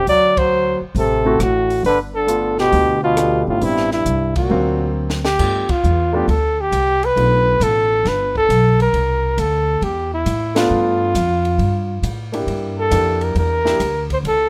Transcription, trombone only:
0.08 F#3
0.37 F#3
0.97 C3
1.40 A2
1.86 D3
2.15 D3
2.58 B2
3.02 B2
3.48 A2
3.61 G2
3.92 G2
4.37 A#2

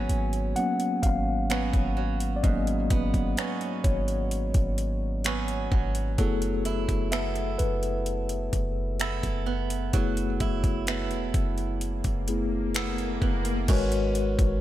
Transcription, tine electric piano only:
Already playing: F#3 A#3 B3 C#4 C#5 G#5
0.56 F#3 A#3 B3 C#4 F#5
1.03 F5
2.36 D5
2.44 F#3 A#3 B3 C#4 D#5
3.84 C#5
6.19 A3 B3 E4 G#4 A4
7.12 E5
7.58 B4
9.94 A3 B3 E4 G#4
12.29 A3 B3 E4 G#4
13.68 G#3 F#4 A#4 B4 C#5

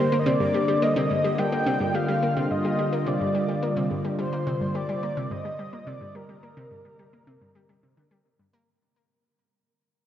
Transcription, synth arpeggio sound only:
0.12 A#3
0.26 C3
0.40 G2
0.54 G3
0.68 G3
0.82 A#3
0.96 C3
1.10 G2
1.24 G3
1.38 G3
1.52 A#3
1.66 C3
1.80 G2
1.94 G3
2.08 G3
2.22 A#3
2.36 C3
2.50 G2
2.64 G3
2.78 G3
2.92 A#3
3.06 C3
3.21 G2
3.34 G3
3.48 G3
3.63 A#3
3.77 C3
3.91 G2
4.05 G3
4.19 G3
4.33 A#3
4.47 C3
4.61 G2
4.75 G3
4.89 G3
5.03 A#3
5.17 C3
5.31 G2
5.45 G3
5.59 G3
5.73 A#3
5.87 C3
6.01 G2
6.15 G3
6.29 G3
6.43 A#3
6.57 C3
6.71 G2
6.85 G3
6.99 G3
7.13 A#3
7.27 C3
7.41 G2
7.55 G3
7.69 G3
7.83 C3
7.97 D3
8.11 G3
8.39 G2
8.53 A#3

